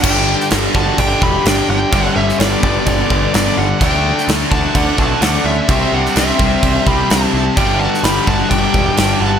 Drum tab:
CC |x---x---x---x---|x---x---x---x---|x---x---x---x---|x---x---x---x---|
SD |---oo-------o---|---oo-------o---|---oo-------o---|---oo-------o---|
BD |o-----o-o-o-----|o-----o-o-o-----|o-----o-o-o-----|o-----o-o-o-----|

CC |x---x---x---x---|
SD |---oo-------o---|
BD |o-----o-o-o-----|